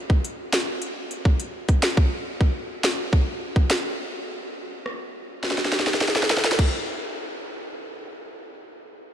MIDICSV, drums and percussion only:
0, 0, Header, 1, 2, 480
1, 0, Start_track
1, 0, Tempo, 576923
1, 1641, Time_signature, 4, 2, 24, 8
1, 7602, End_track
2, 0, Start_track
2, 0, Title_t, "Drums"
2, 82, Note_on_c, 9, 36, 92
2, 165, Note_off_c, 9, 36, 0
2, 204, Note_on_c, 9, 42, 72
2, 287, Note_off_c, 9, 42, 0
2, 440, Note_on_c, 9, 42, 55
2, 442, Note_on_c, 9, 38, 117
2, 449, Note_on_c, 9, 26, 90
2, 523, Note_off_c, 9, 42, 0
2, 525, Note_off_c, 9, 38, 0
2, 532, Note_off_c, 9, 26, 0
2, 679, Note_on_c, 9, 42, 67
2, 762, Note_off_c, 9, 42, 0
2, 923, Note_on_c, 9, 42, 51
2, 1006, Note_off_c, 9, 42, 0
2, 1042, Note_on_c, 9, 36, 92
2, 1125, Note_off_c, 9, 36, 0
2, 1161, Note_on_c, 9, 42, 78
2, 1245, Note_off_c, 9, 42, 0
2, 1402, Note_on_c, 9, 42, 55
2, 1403, Note_on_c, 9, 36, 91
2, 1485, Note_off_c, 9, 42, 0
2, 1486, Note_off_c, 9, 36, 0
2, 1521, Note_on_c, 9, 38, 107
2, 1528, Note_on_c, 9, 26, 85
2, 1604, Note_off_c, 9, 38, 0
2, 1611, Note_off_c, 9, 26, 0
2, 1641, Note_on_c, 9, 36, 121
2, 1725, Note_off_c, 9, 36, 0
2, 2002, Note_on_c, 9, 36, 91
2, 2085, Note_off_c, 9, 36, 0
2, 2363, Note_on_c, 9, 38, 113
2, 2370, Note_on_c, 9, 26, 93
2, 2446, Note_off_c, 9, 38, 0
2, 2453, Note_off_c, 9, 26, 0
2, 2602, Note_on_c, 9, 36, 98
2, 2685, Note_off_c, 9, 36, 0
2, 2962, Note_on_c, 9, 36, 89
2, 3045, Note_off_c, 9, 36, 0
2, 3081, Note_on_c, 9, 38, 115
2, 3088, Note_on_c, 9, 26, 96
2, 3165, Note_off_c, 9, 38, 0
2, 3171, Note_off_c, 9, 26, 0
2, 4042, Note_on_c, 9, 37, 61
2, 4125, Note_off_c, 9, 37, 0
2, 4521, Note_on_c, 9, 38, 56
2, 4582, Note_off_c, 9, 38, 0
2, 4582, Note_on_c, 9, 38, 49
2, 4641, Note_off_c, 9, 38, 0
2, 4641, Note_on_c, 9, 38, 54
2, 4702, Note_off_c, 9, 38, 0
2, 4702, Note_on_c, 9, 38, 52
2, 4762, Note_off_c, 9, 38, 0
2, 4762, Note_on_c, 9, 38, 66
2, 4822, Note_off_c, 9, 38, 0
2, 4822, Note_on_c, 9, 38, 58
2, 4881, Note_off_c, 9, 38, 0
2, 4881, Note_on_c, 9, 38, 68
2, 4941, Note_off_c, 9, 38, 0
2, 4941, Note_on_c, 9, 38, 62
2, 5001, Note_off_c, 9, 38, 0
2, 5001, Note_on_c, 9, 38, 77
2, 5061, Note_off_c, 9, 38, 0
2, 5061, Note_on_c, 9, 38, 66
2, 5121, Note_off_c, 9, 38, 0
2, 5121, Note_on_c, 9, 38, 83
2, 5181, Note_off_c, 9, 38, 0
2, 5181, Note_on_c, 9, 38, 76
2, 5241, Note_off_c, 9, 38, 0
2, 5241, Note_on_c, 9, 38, 94
2, 5302, Note_off_c, 9, 38, 0
2, 5302, Note_on_c, 9, 38, 81
2, 5361, Note_off_c, 9, 38, 0
2, 5361, Note_on_c, 9, 38, 96
2, 5421, Note_off_c, 9, 38, 0
2, 5421, Note_on_c, 9, 38, 85
2, 5481, Note_on_c, 9, 36, 99
2, 5481, Note_on_c, 9, 49, 83
2, 5505, Note_off_c, 9, 38, 0
2, 5564, Note_off_c, 9, 36, 0
2, 5564, Note_off_c, 9, 49, 0
2, 7602, End_track
0, 0, End_of_file